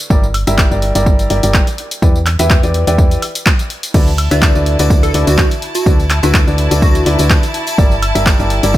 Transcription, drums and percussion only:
0.10 kick, tambourine
0.23 tambourine
0.34 open hi-hat, high woodblock
0.47 closed hi-hat, tambourine
0.58 kick, clap, tambourine
0.72 tambourine
0.82 open hi-hat
0.95 closed hi-hat, tambourine
1.06 kick, tambourine
1.19 closed hi-hat, tambourine
1.30 open hi-hat
1.43 closed hi-hat, tambourine
1.54 kick, clap, tambourine
1.67 closed hi-hat, tambourine
1.78 open hi-hat
1.91 closed hi-hat, tambourine
2.02 kick, tambourine
2.16 tambourine
2.26 clap, open hi-hat, high woodblock
2.39 closed hi-hat, tambourine
2.50 kick, clap, tambourine
2.63 closed hi-hat, tambourine
2.74 open hi-hat
2.87 closed hi-hat, tambourine
2.98 kick, tambourine
3.11 closed hi-hat, tambourine
3.22 open hi-hat, high woodblock
3.35 closed hi-hat, tambourine
3.46 kick, clap, tambourine
3.59 closed hi-hat, tambourine
3.70 open hi-hat
3.83 closed hi-hat, tambourine
3.94 kick, tambourine, crash
4.07 tambourine
4.18 open hi-hat, high woodblock
4.31 closed hi-hat, tambourine
4.42 kick, clap, tambourine
4.55 tambourine
4.66 open hi-hat
4.79 closed hi-hat, tambourine
4.90 kick, tambourine
5.03 closed hi-hat, tambourine
5.14 open hi-hat
5.27 closed hi-hat, tambourine
5.38 kick, clap, tambourine
5.51 closed hi-hat, tambourine
5.62 open hi-hat
5.75 closed hi-hat, tambourine
5.86 kick, tambourine
6.00 tambourine
6.10 clap, open hi-hat, high woodblock
6.23 closed hi-hat, tambourine
6.34 kick, clap, tambourine
6.47 tambourine
6.58 open hi-hat
6.71 closed hi-hat, tambourine
6.82 kick, tambourine
6.95 closed hi-hat, tambourine
7.06 open hi-hat
7.19 closed hi-hat, tambourine
7.30 kick, clap, tambourine
7.43 closed hi-hat, tambourine
7.54 open hi-hat
7.67 closed hi-hat, tambourine
7.78 kick, tambourine
7.91 tambourine
8.02 open hi-hat, high woodblock
8.15 closed hi-hat, tambourine
8.26 kick, clap, tambourine
8.40 tambourine
8.50 open hi-hat
8.63 closed hi-hat, tambourine
8.74 kick, tambourine

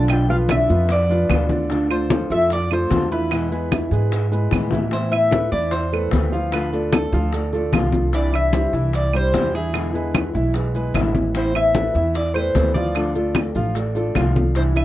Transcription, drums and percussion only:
0.08 high bongo, high conga, claves, maracas
0.29 high conga, maracas
0.49 high bongo, high conga, claves, maracas
0.69 high bongo, maracas
0.89 high bongo, high conga, maracas
1.09 high bongo, high conga, maracas
1.29 high bongo, low bongo, high conga, claves, maracas
1.49 high bongo, high conga, maracas
1.70 high bongo, high conga, maracas
1.90 high conga, claves, maracas
2.10 high bongo, high conga, maracas
2.31 high conga, maracas
2.50 high bongo, high conga, maracas
2.71 high conga, claves, maracas
2.91 high bongo, low bongo, high conga, maracas
3.11 maracas
3.31 high bongo, high conga, claves, maracas
3.52 high conga, maracas
3.72 high bongo, high conga, claves, maracas
3.92 high bongo, maracas
4.12 high bongo, high conga, maracas
4.32 high bongo, high conga, maracas
4.51 high bongo, high conga, claves, maracas
4.71 low bongo, high conga, maracas
4.91 high bongo, high conga, maracas
5.13 high conga, claves, maracas
5.31 high bongo, high conga, maracas
5.52 high conga, maracas
5.71 high bongo, high conga, maracas
5.92 high conga, claves, maracas
6.11 high bongo, low bongo, high conga, maracas
6.33 maracas
6.52 high bongo, high conga, claves, maracas
6.73 high conga, maracas
6.92 high bongo, high conga, claves, maracas
7.13 high bongo, maracas
7.33 high bongo, high conga, maracas
7.53 high bongo, high conga, maracas
7.73 high bongo, low bongo, high conga, claves, maracas
7.92 high bongo, high conga, maracas
8.13 high bongo, high conga, maracas
8.34 high conga, claves, maracas
8.53 high bongo, high conga, maracas
8.73 high conga, maracas
8.93 high bongo, high conga, maracas
9.13 high conga, claves, maracas
9.34 high bongo, low bongo, high conga, maracas
9.55 maracas
9.74 high bongo, high conga, claves, maracas
9.95 high conga, maracas
10.14 high bongo, high conga, claves, maracas
10.35 high bongo, maracas
10.54 high bongo, high conga, maracas
10.75 high bongo, high conga, maracas
10.94 high bongo, low bongo, high conga, claves, maracas
11.15 high bongo, high conga, maracas
11.35 high bongo, high conga, maracas
11.55 high conga, claves, maracas
11.75 high bongo, high conga, maracas
11.95 high conga, maracas
12.15 high bongo, high conga, maracas
12.35 high conga, claves, maracas
12.55 high bongo, low bongo, high conga, maracas
12.75 high conga, maracas
12.95 high bongo, high conga, claves, maracas
13.15 high conga, maracas
13.35 high bongo, high conga, claves, maracas
13.55 high bongo, maracas
13.75 high bongo, high conga, maracas
13.95 high bongo, high conga, maracas
14.15 high bongo, low bongo, high conga, claves, maracas
14.36 high bongo, high conga, maracas
14.55 high bongo, maracas
14.76 high conga, claves, maracas

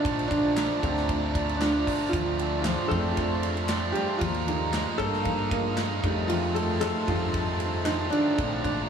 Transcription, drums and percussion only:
0.05 kick, ride
0.19 ride
0.31 kick, ride
0.57 snare, clap, ride
0.83 kick, ride
0.97 snare
1.09 kick, ride
1.35 kick, ride
1.49 ride
1.61 snare, clap, ride
1.87 kick, open hi-hat, ride
2.13 kick, hi-hat pedal, ride
2.39 ride
2.65 snare, clap, ride
2.91 kick, ride
3.17 kick, ride
3.43 ride
3.57 ride
3.69 snare, clap, ride
3.95 ride
4.21 kick, ride
4.34 ride
4.48 ride
4.73 snare, clap, ride
4.99 kick, ride
5.13 snare
5.25 kick, ride
5.51 kick, ride
5.77 snare, clap, ride
6.04 kick, ride
6.29 ride
6.56 ride
6.82 snare, clap, ride
7.08 kick, ride
7.34 kick, ride
7.60 ride
7.86 snare, clap, ride
8.12 ride
8.38 kick, ride
8.64 kick, ride

